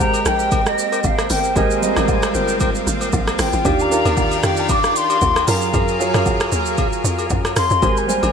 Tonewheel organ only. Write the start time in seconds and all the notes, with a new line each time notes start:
Already playing: A#4 C5 G5
0.26 A#4 C5 G5
0.52 A#4 C5 G5
0.92 A#4 C5 G5
1.30 A#4 C5 G5
1.56 A#4 C5 G#5
2.34 A#4 C5 G5
2.61 A#4 C5 G5
3.01 A#4 C5 G5
3.39 A#4 C5 G5
3.65 G4 D5 F5
4.43 G4 D5 F5
4.70 G4 D5 F5
5.10 G4 D5 F5
5.48 G#4 A#4 F5
5.73 G#4 A#4 F5
6.52 G#4 A#4 F5
6.78 G#4 A#4 F5
7.18 G#4 A#4 F5
7.56 G#4 A#4 F5
7.82 A#4 C5 G#5